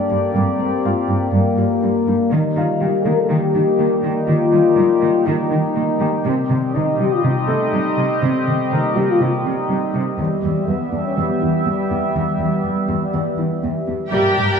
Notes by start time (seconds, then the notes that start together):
Already playing: G3 A#3 D4 G4 A4 D5
0.10 G2 D4
0.35 G2 G3 C4
0.60 G2 A#3
0.85 G2 A#3 F4 F5
1.09 G2 D4
1.33 G2 G3 A#3
1.58 G2 G4 D5
1.82 G2 D4
2.07 G2 D4
2.32 D#3 G3 A#3 D#4 G4
2.57 D#3 G3 F4 F5
2.81 D#3 G3 G4
3.06 D#3 A#3 A#4
3.20 A4
3.30 D#3 G4
3.55 D#3 D#4
3.79 D#3 A#3
4.04 D#3 A#3
4.28 D#3 F4
4.53 D#3 G3 C5
4.78 D#3 G3
5.02 D#3 A#3
5.26 D#3 D#4
5.51 D#3 D#4
5.76 D#3 A#3
6.00 D#3 A#3 G4
6.25 C3 G3 C4 G4 D#5
6.50 C3 D#3
6.75 C3 D#3 D#4
6.99 C3 G3 G4
7.13 F4
7.24 C3 D#4
7.47 C3 A3 C4 A4
7.73 C3 G3
7.98 C3 G3
8.22 C3 C4
8.47 C3 D#3
8.71 C3 D#3 A#3 D#4 A#4
8.96 C3 G3 G4
9.11 F4
9.20 C3 D#4
9.45 C3 C4
9.70 C3 G3
9.94 C3 G3
10.18 E2 E3 G3 B3 G4 E5
10.44 E2 G3
10.68 E2 G3 B3
10.92 E2 B3 D4
11.05 C#4
11.17 E2 E3 B3
11.42 E2 E4
11.65 E2 G3 B3
11.91 E2 B3
12.14 E2 E3 G3
12.40 E2 G3
12.65 E2 G3
12.89 E2 B3
13.14 E2 E3 D5
13.38 E2 E4
13.63 E2 B3
13.88 E2 B3
14.11 G2 G3 A#3 D4 G4 A#4 D5 G5
14.36 G2 G3 G4